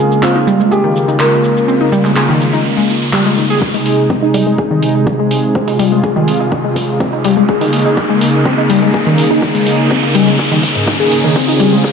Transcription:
Already playing: analog synth pad C#3 G#3 A#3 F4, grand piano G#4, riser
0.12 shaker
0.23 synth pluck C4, grand piano F4, clap, shaker
0.36 synth pluck D#4
0.47 synth pluck G3, shaker
0.60 synth pluck G#3, shaker
0.71 grand piano G4, synth pluck G#4, shaker
0.84 synth pluck D#3
0.96 shaker
1.08 synth pluck D#4, shaker
1.20 grand piano A#4, clap, shaker
1.32 synth pluck G#3
1.44 shaker
1.57 shaker
1.68 synth pluck C4, shaker
1.81 synth pluck D#4
1.92 synth pluck G3, shaker
2.05 synth pluck G#3, clap, shaker
2.16 synth pluck G#4, clap, shaker
2.29 synth pluck D#3
2.41 shaker
2.53 synth pluck D#4, shaker
2.65 shaker
2.77 synth pluck G#3
2.90 shaker
3.02 shaker
3.13 synth pluck G3, clap, shaker
3.26 synth pluck G#3
3.38 synth pluck D#3, shaker
3.50 synth pluck G#4, shaker
3.62 analog synth pad C3 G#3 D#4 G#4, kick, riser
3.74 synth pluck G#3, open hi-hat
3.86 open hi-hat
4.10 synth pluck C4, kick
4.23 synth pluck D#4
4.34 synth pluck G3, open hi-hat
4.47 synth pluck G#3
4.58 synth pluck G#4, kick
4.71 synth pluck D#3
4.83 open hi-hat
4.95 synth pluck D#4
5.07 kick
5.19 synth pluck G#3
5.31 open hi-hat
5.55 synth pluck C4, analog synth pad F4, kick
5.68 synth pluck D#4, open hi-hat
5.79 synth pluck G3, open hi-hat
5.92 synth pluck G#3
6.04 synth pluck G#4, kick
6.16 synth pluck D#3
6.28 open hi-hat
6.40 synth pluck D#4
6.52 kick
6.64 synth pluck G#3
6.76 kick, open hi-hat
7.00 synth pluck C4, kick
7.13 synth pluck D#4
7.24 synth pluck G3, open hi-hat
7.37 synth pluck G#3
7.49 analog synth pad C#3 A#3 D#4 G#4, synth pluck G#4, kick
7.61 synth pluck D#3, open hi-hat
7.73 open hi-hat
7.85 synth pluck D#4
7.97 kick
8.10 synth pluck G#3
8.21 open hi-hat
8.45 synth pluck C4, kick
8.58 synth pluck D#4
8.70 synth pluck G3, open hi-hat
8.82 synth pluck G#3
8.94 synth pluck G#4, kick
9.06 synth pluck D#3
9.18 open hi-hat
9.31 synth pluck D#4
9.42 kick
9.55 synth pluck G#3, open hi-hat
9.66 open hi-hat
9.91 synth pluck C4, kick
10.03 synth pluck D#4
10.15 synth pluck G3, open hi-hat
10.27 synth pluck G#3
10.39 synth pluck G#4, kick
10.52 synth pluck D#3
10.63 kick, open hi-hat
10.76 synth pluck G#2
10.87 synth pluck D#3, kick
11.00 synth pluck G#4
11.12 open hi-hat
11.24 synth pluck D#3
11.36 synth pluck C4, analog synth pad C4 F4, kick
11.48 synth pluck D#4, open hi-hat
11.60 synth pluck G3, open hi-hat
11.73 synth pluck G#3
11.84 synth pluck G#4, kick

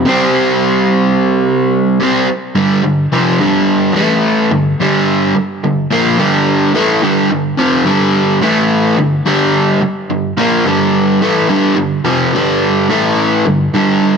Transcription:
0.06 overdriven electric guitar C3 G3 C4
2.00 overdriven electric guitar C3 G3 C4
2.55 overdriven electric guitar G2 D3 G3
2.83 overdriven electric guitar G2 D3
3.12 overdriven electric guitar F2 C3 F3
3.40 overdriven electric guitar G2 D3 G3
3.95 overdriven electric guitar A2 E3 A3
4.51 overdriven electric guitar G2 D3
4.80 overdriven electric guitar G2 D3 G3
5.36 muted overdriven electric guitar stroke
5.64 overdriven electric guitar G2 D3
5.91 overdriven electric guitar A#2 F3 A#3
6.18 overdriven electric guitar G2 D3 G3
6.74 overdriven electric guitar A2 E3 A3
7.02 overdriven electric guitar G2 D3 G3
7.30 overdriven electric guitar G2 D3
7.57 overdriven electric guitar F2 C3 F3
7.85 overdriven electric guitar G2 D3 G3
8.41 overdriven electric guitar A2 E3 A3
8.97 overdriven electric guitar G2 D3
9.26 overdriven electric guitar G2 D3 G3
9.82 muted overdriven electric guitar stroke
10.10 overdriven electric guitar G2 D3
10.37 overdriven electric guitar A#2 F3 A#3
10.65 overdriven electric guitar G2 D3 G3
11.21 overdriven electric guitar A2 E3 A3
11.49 overdriven electric guitar G2 D3 G3
11.77 overdriven electric guitar G2 D3
12.05 overdriven electric guitar F2 C3 F3
12.34 overdriven electric guitar G2 D3 G3
12.90 overdriven electric guitar A2 E3 A3
13.46 overdriven electric guitar G2 D3
13.75 overdriven electric guitar G2 D3 G3

